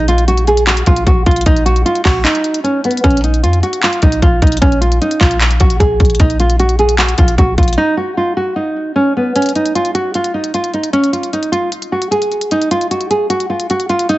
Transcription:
Already playing: A#1
0.08 F4, closed hi-hat
0.18 closed hi-hat
0.28 F#4, closed hi-hat
0.38 closed hi-hat
0.47 G#4, closed hi-hat
0.57 closed hi-hat
0.67 F#4, clap, closed hi-hat
0.77 closed hi-hat
0.86 A#1 F4, kick, closed hi-hat
0.96 closed hi-hat
1.07 A#1 F#4, kick, closed hi-hat
1.26 A#1 F4, kick, closed hi-hat
1.31 closed hi-hat
1.36 closed hi-hat
1.41 closed hi-hat
1.46 A#1 D#4, kick, closed hi-hat
1.57 closed hi-hat
1.66 F#4, closed hi-hat
1.76 closed hi-hat
1.86 F4, closed hi-hat
1.95 closed hi-hat
2.05 A#1 F#4, kick, clap, open hi-hat
2.24 D#4, clap, closed hi-hat
2.35 closed hi-hat
2.44 closed hi-hat
2.54 closed hi-hat
2.64 C#4, closed hi-hat
2.84 B3, closed hi-hat
2.91 closed hi-hat
2.97 closed hi-hat
3.04 A#1 C#4, kick, closed hi-hat
3.11 closed hi-hat
3.17 closed hi-hat
3.24 D#4, closed hi-hat
3.34 closed hi-hat
3.43 F2 F4, closed hi-hat
3.53 closed hi-hat
3.63 F#4, closed hi-hat
3.73 closed hi-hat
3.83 F4, clap, closed hi-hat
3.93 closed hi-hat
4.02 A#1 D#4, kick, closed hi-hat
4.12 closed hi-hat
4.22 A#1 F4, kick, closed hi-hat
4.42 A#1 D#4, kick, closed hi-hat
4.47 closed hi-hat
4.52 closed hi-hat
4.57 closed hi-hat
4.62 A#1 C#4, kick, closed hi-hat
4.72 closed hi-hat
4.81 F4, closed hi-hat
4.92 closed hi-hat
5.01 D#4, closed hi-hat
5.11 closed hi-hat
5.20 A#1 F4, kick, clap, closed hi-hat
5.31 closed hi-hat
5.41 clap, closed hi-hat
5.51 closed hi-hat
5.60 A#1 F#4, kick, closed hi-hat
5.70 closed hi-hat
5.80 A#1 G#4, kick, closed hi-hat
6.00 A#1, kick, closed hi-hat
6.05 closed hi-hat
6.10 closed hi-hat
6.15 closed hi-hat
6.20 A#1 D#4, kick, closed hi-hat
6.30 closed hi-hat
6.40 F4, closed hi-hat
6.50 closed hi-hat
6.60 F#4, closed hi-hat
6.69 closed hi-hat
6.79 G#4, closed hi-hat
6.89 closed hi-hat
6.98 F#4, clap, closed hi-hat
7.09 closed hi-hat
7.18 A#1 F4, kick, closed hi-hat
7.28 closed hi-hat
7.38 A#1 F#4, kick, closed hi-hat
7.58 A#1 F4, kick, closed hi-hat
7.63 closed hi-hat
7.68 closed hi-hat
7.73 closed hi-hat
7.78 D#4
7.97 F#4
8.17 F4
8.37 F#4
8.56 D#4
8.96 C#4
9.17 B3
9.36 C#4, closed hi-hat
9.42 closed hi-hat
9.46 closed hi-hat
9.49 closed hi-hat
9.56 D#4, closed hi-hat
9.66 closed hi-hat
9.75 F4, closed hi-hat
9.85 closed hi-hat
9.95 F#4, closed hi-hat
10.14 F4, closed hi-hat
10.24 closed hi-hat
10.34 D#4
10.44 closed hi-hat
10.54 F4, closed hi-hat
10.64 closed hi-hat
10.74 D#4, closed hi-hat
10.84 closed hi-hat
10.93 C#4, closed hi-hat
11.04 closed hi-hat
11.13 F4, closed hi-hat
11.23 closed hi-hat
11.33 D#4, closed hi-hat
11.43 closed hi-hat
11.52 F4, closed hi-hat
11.72 closed hi-hat
11.82 closed hi-hat
11.92 F#4
12.02 closed hi-hat
12.11 G#4, closed hi-hat
12.22 closed hi-hat
12.32 closed hi-hat
12.41 closed hi-hat
12.51 D#4, closed hi-hat
12.62 closed hi-hat
12.71 F4, closed hi-hat
12.81 closed hi-hat
12.91 F#4, closed hi-hat
13.01 closed hi-hat
13.10 G#4, closed hi-hat
13.30 F#4, closed hi-hat
13.40 closed hi-hat
13.50 F4
13.60 closed hi-hat
13.70 F#4, closed hi-hat
13.80 closed hi-hat
13.89 F4, closed hi-hat
13.99 closed hi-hat
14.09 D#4, closed hi-hat

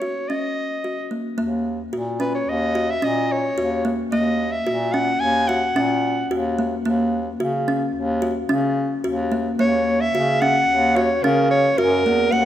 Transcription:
Already playing: C#5
0.02 F#4
0.29 C#4 D#5
0.84 F#4
1.11 A#3
1.38 D#2 A#3
1.93 A#2 F#4
2.20 C#4 B4
2.35 C#5
2.48 D#2 D#5
2.75 F#4
2.90 E5
3.02 A#2 C#4 D#5
3.32 C#5
3.57 D#2 F#4
3.85 A#3
4.12 D#2 A#3 D#5
4.52 E5
4.67 A#2 F#4
4.93 C#4 F#5
5.20 D#2 G#5
5.48 F#4 F#5
5.75 A#2 C#4
6.30 D#2 F#4
6.58 A#3
6.85 D#2 A#3
7.40 C#3 F#4
7.68 C#4
7.95 D#2
8.22 F#4
8.49 C#3 C#4
9.04 D#2 F#4
9.32 A#3
9.59 D#2 A#3 C#5
10.01 E5
10.14 C#3 F#4
10.41 C#4 F#5
10.69 D#2
10.96 F#4 C#5
11.23 C#3 C#4 A#4
11.51 C#5
11.78 F#2 F#4 A#4
12.05 E2 A#3
12.32 D#2 A#3 F#5

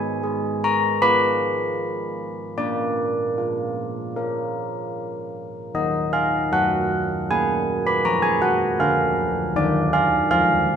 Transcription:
Already playing: G#3 G#5
0.23 G#4
0.64 A#5
1.02 F4 B4 B5
2.58 A#3 D5
3.38 F4
4.16 F4 A#4
5.75 D#3 A#4 D#5
6.13 F5
6.52 F#3 F#5
7.31 A#3 G#5
7.87 B5
8.05 F3 A#5
8.22 G#5
8.42 F#5
8.80 D3 A#4 F5
9.56 D#3 D5
9.93 F5
10.31 F3 F5

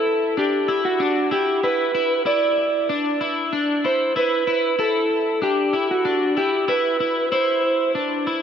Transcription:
Already playing: E4 A4
0.37 D4 G4
0.68 E4
0.85 F#4
1.00 D4
1.31 E4 G4
1.63 E4 B4
1.95 E4
2.26 E4 D5
2.89 D4
3.21 E4
3.53 D4
3.84 E4 C5
4.16 E4 B4
4.47 E4
4.79 E4 A4
5.42 D4 G4
5.73 E4
5.91 F#4
6.05 D4
6.37 E4 G4
6.68 E4 B4
7.00 E4
7.32 E4 C5
7.95 D4
8.27 E4

